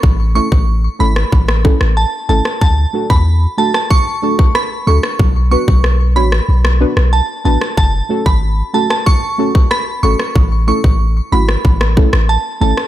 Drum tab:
SD |-------r-r-r---r|-------r----r--r|----r--r-r-r---r|-------r----r--r|
BD |o--o----o-o-----|o--o----o--o----|o--o------------|o--o----o--o----|

SD |-------r-r-r---r|
BD |o--o----o-o-----|